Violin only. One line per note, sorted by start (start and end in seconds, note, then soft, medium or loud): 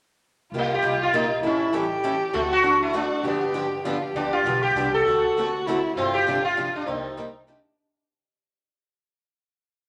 0.53 1.39 F4 medium
1.44 1.76 E4 medium
1.74 2.36 G4 loud
2.34 2.66 F#4 loud
2.64 2.95 D4 medium
2.94 3.25 F#4 medium
3.24 3.84 G4 medium
3.86 4.04 F4 medium
4.03 5.07 G4 medium
5.06 5.68 F#4 medium
5.67 5.96 E4 medium
5.97 6.89 F4 medium
6.87 7.47 D#4 medium
7.49 7.76 D4 medium